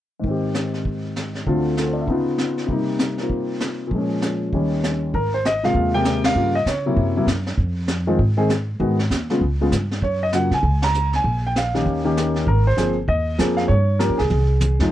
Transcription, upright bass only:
5.14 G#1
5.75 D#2
6.35 G2
6.66 C#3
6.96 F#2
7.26 F#2
7.58 F2
8.19 G#2
8.80 G#2
9.10 D#2
9.41 C#2
9.71 G2
10.02 F#2
10.51 C#3
10.63 C#2
11.24 A#1
11.86 D#2
12.47 G#1
12.77 G1
13.08 D#2
13.39 F2
13.69 G2
14.09 F2
14.20 C#2
14.30 C2
14.79 E2

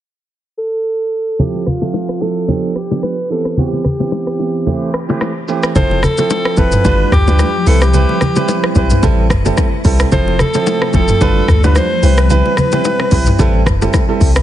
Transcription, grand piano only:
1.39 F3 C4 E4 A4
1.81 F3 C4 A4 E5
2.21 F3 C4 E4 A4
2.48 F3 B3 D4 G4
2.90 F3 B3 D4 G4
3.30 E3 B3 C4 G4
3.57 E3 B3 C4 G4
3.99 E3 B3 C4 G4
4.39 E3 B3 C4 G4
4.66 E3 A3 C4 G4
5.08 E3 A3 C4 G4
5.48 E3 A3 C4 G4
5.75 F3 C4 E4 A4
6.18 F3 C4 E4 A4
6.57 F3 C4 E4 A4
6.85 G3 D4 F4 B4
7.27 G3 D4 F4 B4
7.66 G3 C4 E4 B4
7.94 G3 C4 E4 B4
8.36 G3 C4 E4 B4
8.75 G3 C4 E4 B4
9.03 G3 C4 E4 A4
9.45 G3 C4 E4 A4
9.85 G3 C4 E4 A4
10.12 F3 C4 E4 A4
10.54 F3 C4 E4 A4
10.94 F3 C4 E4 A4
11.21 G3 D4 F4 B4
11.63 G3 D4 F4 B4
12.03 G3 C4 E4 B4
12.30 G3 C4 E4 B4
12.72 G3 C4 E4 B4
13.12 G3 C4 E4 B4
13.39 G3 C4 E4 A4
13.81 G3 C4 E4 A4
14.09 G3 C4 E4 A4

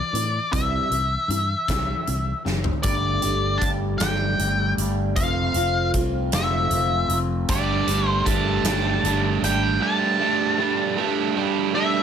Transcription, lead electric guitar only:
Already playing: D5
0.53 E5
2.83 D5
3.58 A5
3.98 G5
5.16 F5
6.35 E5
7.50 D5
8.09 C5
8.25 A5
9.44 G5
9.82 A5
11.75 E5

